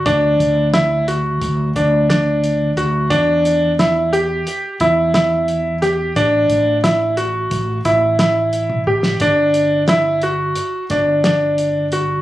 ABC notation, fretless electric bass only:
X:1
M:9/8
L:1/8
Q:3/8=59
K:Em
V:1 name="Fretless electric bass" clef=bass
D,, D,,3 D,, D,,3 D,, | E,,4 z E,,4 | A,,, A,,,3 A,,, A,,,3 A,,, | G,,,4 z G,,,4 |]